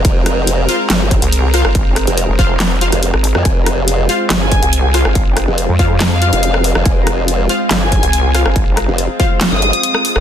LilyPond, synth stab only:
\new Staff \with { instrumentName = "Synth stab" } { \time 4/4 \key f \minor \tempo 4 = 141 r4. <f' c'' f''>8 r4. <f' c'' f''>8 | r4. <f' c'' f''>4 <f' c'' f''>8 r4 | r4. <f' c'' f''>8 r4. <f' c'' f''>8 | r4. <f' c'' f''>4 <f' c'' f''>8 r4 |
r4. <f' c'' f''>8 r4. <f' c'' f''>8 | r4. <f' c'' f''>4 r4. | }